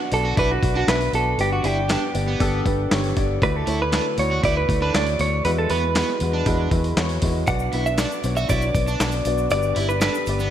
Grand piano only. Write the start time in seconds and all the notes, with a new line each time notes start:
Already playing: B2 B3 D4 F#4 D5
0.11 B3 D4 F#4 D5
0.37 B3 D4 F#4 D5
0.62 B3 D4 F#4 D5
0.87 B3 D4 F#4 E5
1.13 B3 D4 F#4 D5
1.39 G2 B3 D4 G4 D5
1.64 B3 D4 G4 D5
1.88 B3 D4 G4 D5
2.14 B3 D4 G4 D5
2.39 B3 D4 G4 A4
2.65 B3 D4 G4 B4
2.90 B3 D4 G4 C#5
3.16 B3 D4 G4 D5
3.42 D3 A3 E4 F#4 D5
3.66 A3 E4 F#4 C#5
3.91 A3 E4 F#4 A4
4.18 A3 E4 F#4 D5
4.43 A3 E4 F#4 B4
4.68 A3 E4 F#4 D5
4.94 A3 E4 F#4 C#5
5.19 A3 E4 F#4 D5
5.44 E3 G#3 E4 F#4 B4
5.70 G#3 E4 F#4 B4
5.96 G#3 E4 F#4 B4
6.21 G#3 E4 F#4 B4
6.46 G#3 E4 F#4 B4
6.71 G#3 E4 F#4 B4
6.96 G#3 E4 F#4 C#5
7.22 G#3 E4 F#4 B4
7.48 B2 B3 D4 F#4 D5
7.73 B3 D4 F#4 B4
7.98 B3 D4 F#4 D5
8.23 B3 D4 F#4 C#5
8.50 B3 D4 F#4 C#5
8.75 B3 D4 F#4 D5
9.00 B3 D4 F#4 D5
9.25 B3 D4 F#4 D5
9.51 G2 B3 D4 G4 D5
9.77 B3 D4 G4 D5
10.01 B3 D4 G4 A4
10.28 B3 D4 G4 D5